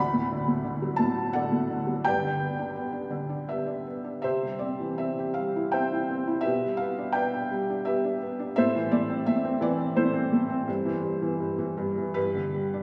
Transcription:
Already playing: D2 D5 F#5 B5
0.13 A2
0.32 D3
0.48 A3
0.65 D3
0.82 F#3
0.96 A2 A5
1.16 F#4
1.33 D3 A4 D5 F#5
1.52 A3
1.70 D3
1.87 F#3
2.04 G2 B4 D5 G5
2.23 D3
2.40 B3
2.59 D4
2.76 B3
2.92 D4
3.11 D3
3.29 D4
3.48 B3 G4 B4 E5
3.66 D4
3.86 B3
4.04 D4
4.22 C3 G4 C5 E5
4.43 G3
4.59 C4 D5
4.80 E3
4.98 C4 E5
5.19 G4
5.34 G3 F5
5.56 E4
5.72 C4 C5 E5 G5
5.92 E4
6.10 C4
6.27 E4
6.41 G4 B4 E5
6.46 B2
6.63 G3
6.77 F5
6.81 B3
6.98 D4
7.12 B4 D5 G5
7.17 B3
7.34 D4
7.51 G3
7.70 D4
7.85 B3 G4 B4 E5
8.04 D4
8.22 B3
8.39 D4
8.56 A2 A4 C5 E5
8.76 E3
8.91 A3 D5
9.10 C4
9.26 A3 E5
9.45 C4
9.61 E3 D5
9.78 C4
9.96 A3 E4 A4 C5
10.14 C4
10.33 A3
10.49 C4
10.67 G2
10.85 E3
11.03 G2
11.22 E3
11.40 G2
11.58 E3
11.77 G2
11.97 E3
12.14 G2 B4
12.35 D3
12.54 G3
12.74 D4

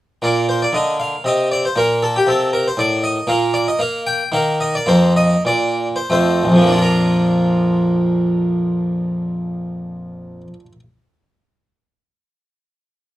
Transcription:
0.22 A#2 A#3 D5
0.49 C5
0.62 D5
0.73 D3 D#5
1.00 F5
1.24 C3 D#5
1.51 D5
1.65 C5
1.76 A#2 A#3 A#4
2.03 A4
2.16 G4
2.27 C3 A4
2.53 A#4
2.68 C5
2.77 A2 D5
3.04 D#5
3.27 A#2 A#3 F5
3.54 D5
3.68 D#5
3.79 A#3 F5
4.07 G5
4.32 D#3 A#3 F5
4.60 D#5
4.75 D5
4.86 F2 A#3 C5
5.16 D#5
5.45 A#2 D5
5.96 C5
6.10 F2 A3 C5
6.43 A#1
6.50 F2
6.56 F3
6.62 A#3
6.68 D4
6.74 F4
6.82 A#4

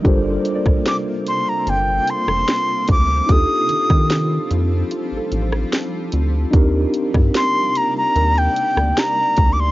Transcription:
Already playing: C3 A#3 A#4
0.02 G1 G3 C4 D4 F4 G4 A4, kick, closed hi-hat
0.07 A#4 C5
0.30 C5
0.45 closed hi-hat
0.55 D5
0.66 A#1, kick, cross-stick
0.86 D6, snare, closed hi-hat
1.26 C6, closed hi-hat
1.49 A#5
1.67 G1 G5, closed hi-hat
2.07 C6, closed hi-hat
2.28 F1, cross-stick
2.48 snare, closed hi-hat
2.88 D2 D6, kick, closed hi-hat
3.26 D#2 F3 G3 D4 D#4 F4, kick, closed hi-hat
3.30 G4 A4 D#6
3.69 D#3, closed hi-hat
3.90 D#3, kick, cross-stick
4.10 snare, closed hi-hat
4.51 F2, closed hi-hat
4.91 F4, closed hi-hat
5.12 A1
5.17 A4
5.32 A1, closed hi-hat
5.42 C5
5.52 cross-stick
5.72 snare, closed hi-hat
6.12 D2, closed hi-hat
6.51 D#2 C3 G3 A#3 C4 D4 D#4 G4 D5, kick, closed hi-hat
6.57 A#4
6.94 closed hi-hat
7.14 G2, kick, cross-stick
7.35 C6, snare, closed hi-hat
7.75 A#5, closed hi-hat
7.97 A#5
8.16 D#2 A#4, closed hi-hat
8.38 G5
8.56 closed hi-hat
8.77 D2, cross-stick
8.97 A#5, snare, closed hi-hat
9.37 D2, kick, closed hi-hat
9.53 D6
9.60 C6

